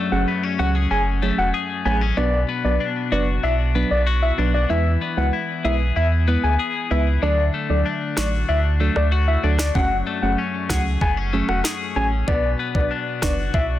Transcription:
Already playing: clean electric guitar F#2 A3 F#4
0.12 sub bass F#1, synth stab F#3 A3 C#4 G#4, soft synth lead F#5
0.28 clean electric guitar B3
0.43 clean electric guitar C#4
0.59 sub bass C#2, synth stab F#3 A3 C#4 G#4, clean electric guitar F#4, soft synth lead F#5
0.75 clean electric guitar G#4
0.91 sub bass F#1, clean electric guitar C#4, soft synth lead G#5
1.22 synth stab F#3 A3 C#4 G#4, clean electric guitar A3
1.38 sub bass E1, soft synth lead F#5
1.54 clean electric guitar G#4
1.85 sub bass A1, synth stab F#3 A3 C#4 G#4, clean electric guitar B3, soft synth lead G#5
2.01 clean electric guitar C#4
2.17 sub bass B1, clean electric guitar B2, synth stab F#3 B3 D4 B4, soft synth lead D5
2.49 clean electric guitar B3
2.64 sub bass B1, synth stab F#3 B3 D4 B4, soft synth lead D5
2.80 clean electric guitar D4
3.12 sub bass F#1, synth stab F#3 B3 D4 B4, clean electric guitar F#4, soft synth lead D5
3.43 sub bass B1, clean electric guitar D4, soft synth lead E5
3.75 synth stab F#3 B3 D4 B4, clean electric guitar B3
3.91 sub bass B1, soft synth lead D5
4.07 clean electric guitar F#4
4.22 soft synth lead E5
4.38 sub bass B1, synth stab F#3 B3 D4 B4, clean electric guitar D4
4.54 soft synth lead D5
4.69 sub bass E2, clean electric guitar E3, synth stab G#3 B3 E4 B4, soft synth lead E5
5.01 clean electric guitar B3
5.17 sub bass C#2, synth stab G#3 B3 E4 B4, soft synth lead F#5
5.33 clean electric guitar E4
5.64 sub bass B1, synth stab G#3 B3 E4 B4, clean electric guitar G#4, soft synth lead E5
5.96 sub bass E2, clean electric guitar E4, soft synth lead E5
6.27 synth stab G#3 B3 E4 B4, clean electric guitar B3
6.44 sub bass D2, soft synth lead G#5
6.59 clean electric guitar G#4
6.91 sub bass C#2, synth stab G#3 B3 E4 B4, clean electric guitar E4, soft synth lead E5
7.22 sub bass D2, clean electric guitar D3, synth stab F#3 A3 D4 A4, soft synth lead D5
7.54 clean electric guitar A3
7.70 sub bass D2, synth stab F#3 A3 D4 A4, soft synth lead D5
7.86 clean electric guitar D4
8.17 sub bass A1, synth stab F#3 A3 D4 A4, clean electric guitar F#4, soft synth lead D5, cross-stick, snare
8.49 sub bass D2, clean electric guitar D4, soft synth lead E5
8.80 synth stab F#3 A3 D4 A4, clean electric guitar A3
8.96 sub bass D2, soft synth lead D5, cross-stick
9.12 clean electric guitar F#4
9.28 soft synth lead E5
9.43 sub bass D2, synth stab F#3 A3 D4 A4, clean electric guitar D4
9.59 soft synth lead D5, cross-stick, snare
9.75 sub bass F#1, clean electric guitar F#2, synth stab F#3 A3 C#4 G#4, soft synth lead F#5, kick
10.07 clean electric guitar A3
10.22 sub bass F#1, synth stab F#3 A3 C#4 G#4, soft synth lead F#5
10.38 clean electric guitar C#4
10.70 sub bass C#2, synth stab F#3 A3 C#4 G#4, clean electric guitar G#4, soft synth lead F#5, kick, cross-stick, snare
11.01 sub bass F#1, clean electric guitar B3, soft synth lead G#5, kick
11.17 clean electric guitar C#4
11.33 synth stab F#3 A3 C#4 G#4, clean electric guitar A3
11.49 sub bass E1, soft synth lead F#5, cross-stick
11.64 clean electric guitar G#4, cross-stick, snare
11.96 sub bass A1, synth stab F#3 A3 C#4 G#4, clean electric guitar C#4, soft synth lead G#5
12.27 sub bass B1, clean electric guitar B2, synth stab F#3 B3 D4 B4, soft synth lead D5, kick
12.59 clean electric guitar B3
12.75 sub bass B1, synth stab F#3 B3 D4 B4, soft synth lead D5, kick
12.91 clean electric guitar D4
13.22 sub bass F#1, synth stab F#3 B3 D4 B4, clean electric guitar F#4, soft synth lead D5, kick, cross-stick, snare
13.54 sub bass B1, clean electric guitar D4, soft synth lead E5, kick

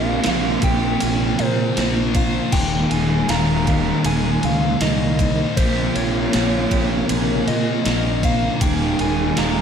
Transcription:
Already playing: fingered electric bass A#1, distorted electric guitar A#2 F3 A#3, analog synth pad C3 C#3 A#3, overdriven electric guitar C4 F4, twelve-string acoustic guitar G4, soft synth lead F5
0.24 fingered electric bass A#1, distorted electric guitar A#2 F3 A#3, twelve-string acoustic guitar F4, snare, ride
0.62 fingered electric bass A#1, twelve-string acoustic guitar G4, soft synth lead G5, kick, ride
1.00 fingered electric bass A#1, distorted electric guitar A#2 F3 A#3, twelve-string acoustic guitar G#4, ride
1.38 fingered electric bass A#2, distorted electric guitar F3 A#3, soft synth lead C5, ride
1.76 fingered electric bass A#1, distorted electric guitar A#2 F3 A#3, twelve-string acoustic guitar A#4, snare, ride
1.97 snare
2.15 twelve-string acoustic guitar C5, soft synth lead F5, kick, ride
2.51 fingered electric bass D#1, distorted electric guitar D#2 A#2 D#3, analog synth pad D#3 G#3, overdriven electric guitar G#3, twelve-string acoustic guitar G#4, soft synth lead G5, kick, crash
2.55 overdriven electric guitar A#3 D#4
2.91 fingered electric bass D#1, soft synth lead G#5, ride
3.28 fingered electric bass D#1, distorted electric guitar D#2 A#2 D#3, twelve-string acoustic guitar F4, soft synth lead A#5, snare, ride
3.67 twelve-string acoustic guitar G4, kick, ride
4.04 fingered electric bass D#1, distorted electric guitar D#2 A#2 D#3, twelve-string acoustic guitar G#4, soft synth lead G#5, ride
4.43 fingered electric bass C#2, distorted electric guitar A#2 D#3, soft synth lead F5, ride
4.81 fingered electric bass C2, distorted electric guitar D#2 A#2 D#3, twelve-string acoustic guitar A#4, soft synth lead D#5, snare, ride
5.19 twelve-string acoustic guitar C5, kick, ride
5.57 fingered electric bass A#1, distorted electric guitar A#2 F3 A#3, analog synth pad C3 C#3, overdriven electric guitar C4 F4, twelve-string acoustic guitar G4, soft synth lead C5, kick, ride
5.96 fingered electric bass A#1, soft synth lead C#5, ride
6.33 fingered electric bass A#1, distorted electric guitar A#2 F3 A#3, twelve-string acoustic guitar F4, snare, ride
6.71 fingered electric bass A#1, twelve-string acoustic guitar G4, kick, ride
7.09 fingered electric bass A#1, distorted electric guitar A#2 F3 A#3, twelve-string acoustic guitar G#4, ride
7.48 fingered electric bass A#2, distorted electric guitar F3 A#3, soft synth lead D#5, ride
7.85 fingered electric bass A#1, distorted electric guitar A#2 F3 A#3, twelve-string acoustic guitar A#4, snare, ride
8.05 snare
8.23 twelve-string acoustic guitar C5, soft synth lead F5, kick, ride
8.61 fingered electric bass D#1, distorted electric guitar D#2 A#2 D#3, analog synth pad D#3 G#3, overdriven electric guitar G#3 A#3 D#4, twelve-string acoustic guitar G#4, soft synth lead G5, kick, ride
8.99 fingered electric bass D#1, soft synth lead G#5, ride
9.37 fingered electric bass D#1, distorted electric guitar D#2 A#2 D#3, twelve-string acoustic guitar F4, soft synth lead A#5, snare, ride

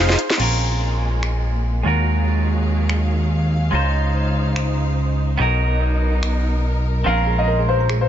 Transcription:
Already playing: analog synth bass F1, supersaw synth D#4 F4 G#4 C5 F5, grand piano C5
0.09 snare
0.19 closed hi-hat
0.30 snare
0.38 analog synth bass A#1, string section G#3 A#3, clean electric guitar C4 C#4 F4 G#4 A#4, crash
1.23 finger snap
1.83 analog synth bass D#2, string section D#3 F#3 G#4 F5, clean electric guitar G#3 C#4 F4 F#4
1.87 clean electric guitar A#4
2.90 finger snap
3.71 analog synth bass C#2, string section C#3 D#4 C5, clean electric guitar G#3 C#4 D#4 F4
3.75 clean electric guitar C5
4.56 finger snap
5.38 analog synth bass B1, clean electric guitar B3 C#4 D#4 F#4, string section B3 D#4 A#4
5.42 clean electric guitar A#4
6.23 finger snap
7.04 analog synth bass A#1, string section G#3, clean electric guitar C4 C#4 F4 G#4 A#4, grand piano F5, synth arpeggio sound F5
7.18 synth arpeggio sound A#5
7.27 synth arpeggio sound G#4
7.39 grand piano D#5, synth arpeggio sound F5
7.48 synth arpeggio sound A#4
7.59 synth arpeggio sound G#4
7.69 grand piano C5, synth arpeggio sound F5
7.80 synth arpeggio sound A#5
7.89 synth arpeggio sound G#4, finger snap
8.01 grand piano C5, synth arpeggio sound F5

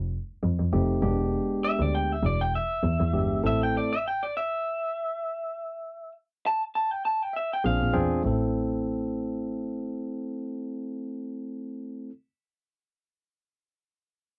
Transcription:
0.43 double bass F2
0.59 double bass F2
0.72 double bass F1, tine electric piano A3 C4 D#4 G4
1.02 double bass E1, tine electric piano G#3 B3 D4 G4
1.65 clean electric guitar E5
1.79 double bass D2, clean electric guitar D5
1.95 clean electric guitar G5
2.12 clean electric guitar E5
2.23 double bass E1, clean electric guitar D5
2.41 clean electric guitar G5
2.55 clean electric guitar E5
2.83 double bass E2
3.00 double bass E2
3.13 double bass G1, tine electric piano G#3 B3 D4 G4
3.43 double bass A1, tine electric piano A3 C4 E4 A4, clean electric guitar E5
3.63 clean electric guitar G5
3.77 clean electric guitar D5
3.93 clean electric guitar E5
4.08 clean electric guitar G5
4.23 clean electric guitar D5
4.37 clean electric guitar E5
6.46 clean electric guitar A5
6.75 clean electric guitar A5
6.91 clean electric guitar G5
7.05 clean electric guitar A5
7.23 clean electric guitar G5
7.33 tine electric piano E5, clean electric guitar E5
7.53 clean electric guitar G5
7.64 double bass A#1, tine electric piano C4 D4 F4 G#4 F5, clean electric guitar F5
7.81 double bass A#2
7.93 double bass E2, tine electric piano C4 D4 F4 G#4 G5
8.23 double bass A1, tine electric piano A3 C4 E4
8.27 tine electric piano A4

